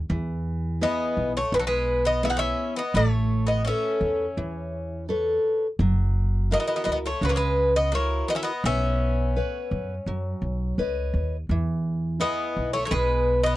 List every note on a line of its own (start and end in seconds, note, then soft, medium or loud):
0.10 0.85 E2 loud
0.10 0.79 E3 medium
0.81 1.38 B3 medium
0.81 1.32 B3 medium
0.81 1.38 E4 soft
0.81 1.39 G#4 medium
0.81 1.32 D#5 medium
1.17 1.42 B1 medium
1.37 1.52 A3 medium
1.37 1.53 C#5 medium
1.52 2.52 B1 medium
1.52 2.21 B2 medium
1.52 1.59 G#3 medium
1.52 1.59 B4 medium
1.59 1.66 F#3 medium
1.59 1.66 A4 medium
1.67 2.03 G#3 medium
1.67 2.03 B4 medium
2.05 2.22 B3 medium
2.05 2.23 D#5 medium
2.23 2.30 B3 medium
2.23 2.80 B3 medium
2.23 2.81 E4 soft
2.23 2.81 G#4 soft
2.23 2.30 E5 medium
2.30 2.37 D#4 medium
2.30 2.37 F#5 medium
2.37 2.74 C#4 medium
2.37 2.75 E5 medium
2.76 2.93 B3 medium
2.76 2.96 D#5 medium
2.94 3.69 A1 loud
2.94 3.44 A3 medium
2.94 3.64 A3 medium
2.94 3.48 C#5 medium
3.47 3.64 B3 medium
3.47 3.65 D#5 medium
3.65 5.04 C#4 medium
3.65 4.24 A4 medium
3.65 4.24 B4 soft
3.65 5.05 E5 medium
3.69 4.25 C#5 medium
4.01 4.26 E2 medium
4.37 5.37 E2 medium
4.37 5.07 E3 medium
5.09 5.66 A4 medium
5.09 5.66 B4 soft
5.09 5.66 C#5 medium
5.79 6.54 F#1 loud
5.79 6.49 F#3 medium
6.51 6.59 A#3 medium
6.51 7.08 E4 medium
6.51 7.08 F#4 soft
6.51 7.09 A#4 medium
6.51 6.59 D#5 medium
6.60 6.66 B3 medium
6.60 6.66 D#5 medium
6.67 6.74 B3 medium
6.67 6.74 D#5 medium
6.76 6.82 B3 medium
6.76 6.82 D#5 medium
6.84 7.11 C#2 medium
6.84 6.90 B3 medium
6.84 6.90 D#5 medium
6.92 6.98 B3 soft
6.92 6.97 D#5 medium
7.06 7.22 A3 medium
7.06 7.24 C#5 medium
7.21 8.21 C#2 medium
7.21 7.91 C#3 medium
7.21 7.29 F#3 medium
7.21 7.30 B4 medium
7.29 7.36 A#3 medium
7.29 7.37 C#5 medium
7.36 7.73 G#3 medium
7.36 7.73 B4 medium
7.76 7.91 B3 medium
7.76 7.93 D#5 medium
7.92 8.26 A#3 medium
7.92 8.50 E4 medium
7.92 8.51 F#4 soft
7.92 8.51 A#4 soft
7.92 8.27 C#5 medium
8.28 8.34 B3 medium
8.28 8.36 D#5 medium
8.35 8.42 C#4 medium
8.35 8.43 E5 medium
8.43 8.63 B3 medium
8.43 8.66 D#5 medium
8.64 9.39 B1 loud
8.64 9.34 B3 medium
8.64 10.75 C#4 medium
8.64 10.75 E5 loud
9.36 9.93 B4 medium
9.36 9.93 C#5 soft
9.36 9.93 F#5 medium
9.71 9.96 F#2 medium
10.06 10.31 F#2 medium
10.06 10.76 F#3 medium
10.42 10.74 B1 medium
10.78 11.10 C#2 medium
10.78 11.35 B4 medium
10.78 11.36 C#5 soft
10.78 11.36 D#5 soft
11.14 11.46 D#2 medium
11.49 12.24 E2 medium
11.49 12.19 E3 medium
12.20 12.70 B3 medium
12.20 12.77 E4 soft
12.20 12.77 G#4 soft
12.20 12.77 B4 medium
12.20 12.73 D#5 medium
12.56 12.81 B1 medium
12.73 12.84 A3 medium
12.73 12.84 C#5 medium
12.85 12.92 A3 medium
12.85 12.92 C#5 medium
12.91 13.56 B1 medium
12.91 13.56 B2 medium
12.91 13.41 G#3 medium
12.91 13.41 B4 medium
13.43 13.56 B3 medium
13.43 13.55 D#5 loud